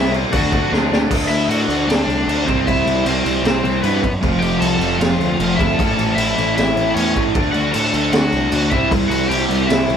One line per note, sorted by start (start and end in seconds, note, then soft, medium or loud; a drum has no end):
0.00 0.24 C2 loud
0.00 0.11 C3 medium
0.00 0.12 G3 medium
0.00 0.12 C4 loud
0.00 0.11 E4 medium
0.00 0.12 E4 medium
0.00 0.11 E5 loud
0.12 0.31 C3 medium
0.12 0.31 G3 medium
0.12 0.32 C4 loud
0.12 0.32 E4 medium
0.12 crash medium
0.31 0.63 D2 loud
0.31 0.49 D3 medium
0.31 0.49 F#3 loud
0.31 0.50 A3 loud
0.31 0.50 D4 loud
0.31 0.70 F#4 medium
0.31 kick loud
0.31 crash loud
0.36 0.71 F#5 medium
0.50 0.67 D3 medium
0.50 0.68 F#3 medium
0.50 0.68 A3 medium
0.50 0.68 D4 medium
0.50 kick loud
0.50 crash medium
0.68 0.87 D3 medium
0.68 0.87 F#3 medium
0.68 0.88 A3 loud
0.68 0.89 D4 loud
0.72 0.87 D2 loud
0.72 snare medium
0.88 1.06 D2 medium
0.88 1.05 D3 medium
0.88 1.07 F#3 medium
0.88 1.06 A3 loud
0.88 1.07 D4 loud
0.93 snare loud
1.06 1.66 D3 medium
1.06 1.66 A3 medium
1.06 1.67 D4 medium
1.06 1.65 F#4 medium
1.11 1.27 D2 medium
1.11 2.45 D3 medium
1.11 2.47 A3 medium
1.11 2.47 D4 medium
1.11 kick loud
1.11 crash loud
1.11 crash medium
1.29 1.47 D2 medium
1.29 1.48 E4 medium
1.29 1.49 E5 medium
1.29 crash medium
1.49 1.65 A2 medium
1.49 1.86 F#4 medium
1.49 1.86 F#5 medium
1.49 crash medium
1.67 1.85 D2 medium
1.67 2.25 D3 medium
1.67 2.26 A3 medium
1.67 2.26 D4 medium
1.67 2.25 F#4 medium
1.67 crash medium
1.88 2.04 D2 medium
1.88 2.44 D4 medium
1.88 2.46 D5 medium
1.88 snare loud
1.88 crash medium
2.07 2.24 C2 medium
2.07 crash medium
2.26 2.44 D2 loud
2.26 2.45 D3 medium
2.26 2.45 A3 medium
2.26 2.46 D4 loud
2.26 2.47 F#4 medium
2.26 crash medium
2.46 2.64 C2 medium
2.46 3.04 C3 medium
2.46 3.04 E3 medium
2.46 3.05 G3 medium
2.46 2.65 C4 medium
2.46 3.07 C4 loud
2.46 3.05 E4 loud
2.46 2.65 C5 loud
2.46 kick medium
2.46 crash medium
2.67 2.83 C2 medium
2.67 3.04 E4 medium
2.67 3.07 E5 medium
2.67 kick loud
2.67 crash medium
2.86 3.03 C2 medium
2.86 crash medium
3.05 3.22 C2 medium
3.05 3.63 C3 medium
3.05 3.63 E3 medium
3.05 3.63 G3 medium
3.05 3.62 C4 medium
3.05 3.43 C4 medium
3.05 3.61 E4 medium
3.05 3.44 C5 medium
3.05 crash medium
3.25 3.42 C2 loud
3.25 crash medium
3.44 3.61 C2 loud
3.44 3.82 C4 medium
3.44 3.82 C5 medium
3.44 snare loud
3.44 crash medium
3.62 3.80 C2 medium
3.62 4.03 C3 medium
3.62 4.02 E3 medium
3.62 4.02 G3 medium
3.62 4.01 C4 medium
3.62 4.01 E4 medium
3.62 crash medium
3.82 4.00 G2 loud
3.82 4.02 C3 medium
3.82 4.02 G3 medium
3.82 4.11 B3 medium
3.82 4.03 C4 medium
3.82 4.10 B4 medium
3.82 crash medium
4.03 4.20 F#2 medium
4.03 kick medium
4.03 crash medium
4.21 4.39 F1 loud
4.21 5.57 F2 loud
4.21 5.58 C3 loud
4.21 4.79 F3 loud
4.21 4.81 A3 medium
4.21 4.79 C4 loud
4.21 4.78 F4 loud
4.21 kick loud
4.21 crash medium
4.40 4.58 F1 medium
4.40 4.61 G4 medium
4.40 4.59 G5 medium
4.40 crash medium
4.60 4.78 C2 medium
4.60 4.99 A4 medium
4.60 4.97 A5 medium
4.60 crash medium
4.79 4.96 F1 medium
4.79 5.38 F3 medium
4.79 5.40 A3 medium
4.79 5.38 C4 medium
4.79 5.38 F4 medium
4.79 crash medium
4.99 5.16 F1 medium
4.99 5.55 F4 medium
4.99 5.58 F5 medium
4.99 snare loud
4.99 crash medium
5.19 5.36 D2 medium
5.19 crash medium
5.39 5.56 F1 medium
5.39 5.77 F3 medium
5.39 5.79 A3 medium
5.39 5.79 C4 medium
5.39 5.79 F4 medium
5.39 crash medium
5.56 5.75 D2 medium
5.56 5.77 C3 medium
5.56 5.77 F3 medium
5.56 5.73 E4 medium
5.56 5.78 E5 loud
5.56 kick medium
5.56 crash medium
5.60 5.78 F2 medium
5.74 6.35 A2 medium
5.74 6.14 A4 medium
5.74 6.16 A5 loud
5.79 5.95 A1 medium
5.79 6.36 E3 medium
5.79 6.37 A3 loud
5.79 6.36 C#4 loud
5.79 6.35 E4 loud
5.79 kick loud
5.79 crash medium
5.98 6.15 A1 medium
5.98 crash medium
6.15 6.33 A1 medium
6.15 6.54 E4 medium
6.15 6.55 E5 medium
6.15 crash medium
6.36 6.54 A1 medium
6.36 6.93 A2 medium
6.36 6.94 E3 medium
6.36 6.95 A3 medium
6.36 6.94 C#4 medium
6.36 6.94 E4 medium
6.36 crash medium
6.56 6.74 A1 loud
6.56 6.94 E4 medium
6.56 6.93 E5 loud
6.56 snare loud
6.56 crash medium
6.76 6.93 A1 medium
6.76 crash medium
6.94 7.12 E2 loud
6.94 7.33 A2 medium
6.94 7.33 E3 medium
6.94 7.34 A3 medium
6.94 7.34 C#4 medium
6.94 7.35 E4 medium
6.94 7.22 C#5 medium
6.94 crash medium
6.98 7.24 C#4 medium
7.16 7.32 A1 medium
7.16 7.33 A2 medium
7.16 7.35 E3 medium
7.16 7.34 A3 medium
7.16 kick medium
7.16 crash medium
7.34 7.51 D2 medium
7.34 7.92 D3 medium
7.34 7.92 A3 medium
7.34 7.92 D4 medium
7.34 7.91 F#4 loud
7.34 kick loud
7.34 crash medium
7.53 7.71 D2 medium
7.53 7.73 F#4 medium
7.53 7.71 F#5 medium
7.53 crash medium
7.71 7.91 A2 medium
7.71 8.10 A4 medium
7.71 8.13 A5 medium
7.71 crash medium
7.93 8.10 D2 medium
7.93 8.51 D3 medium
7.93 8.52 A3 medium
7.93 8.51 D4 medium
7.93 8.50 F#4 medium
7.93 crash medium
8.12 8.29 D2 loud
8.12 8.69 F#4 medium
8.12 8.73 F#5 medium
8.12 snare loud
8.12 crash medium
8.32 8.49 C2 medium
8.32 crash medium
8.52 8.72 D2 loud
8.52 8.70 D3 medium
8.52 8.71 A3 medium
8.52 8.71 D4 medium
8.52 8.72 F#4 medium
8.52 crash medium
8.71 8.88 C2 medium
8.71 9.27 C3 medium
8.71 9.29 E3 medium
8.71 9.29 G3 medium
8.71 9.31 C4 medium
8.71 8.91 E4 medium
8.71 9.30 E4 loud
8.71 8.89 E5 loud
8.71 kick medium
8.71 crash medium
8.91 9.08 C2 loud
8.91 kick loud
8.91 crash medium
9.09 9.26 C2 loud
9.09 9.29 F#4 medium
9.09 9.28 F#5 loud
9.09 crash medium
9.29 9.46 C2 loud
9.29 9.87 C3 medium
9.29 9.88 E3 medium
9.29 9.88 G3 medium
9.29 9.88 C4 medium
9.29 9.87 E4 medium
9.29 9.67 G4 medium
9.29 9.66 G5 loud
9.29 crash medium
9.49 9.66 C2 medium
9.49 crash medium
9.67 9.86 C2 loud
9.67 9.97 E4 medium
9.67 9.97 E5 medium
9.67 crash medium
9.71 snare loud
9.88 9.97 C2 medium
9.88 9.97 C3 medium
9.88 9.97 E3 medium
9.88 9.97 G3 medium
9.88 9.97 C4 medium
9.88 9.97 E4 medium
9.88 crash medium